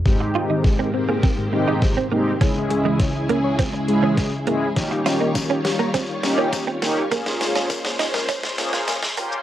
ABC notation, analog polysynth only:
X:1
M:4/4
L:1/8
Q:1/4=102
K:Ab
V:1 name="Analog polysynth"
[A,CEG]3 z2 [A,CEG] z [A,CEG] | [A,D_FA]3 z2 [A,DFA] z [A,DFA] | [B,DEG]3 z2 [B,DEG] z [B,DEG] | [B,DFA]3 z2 [B,DFA] z [B,DFG] |]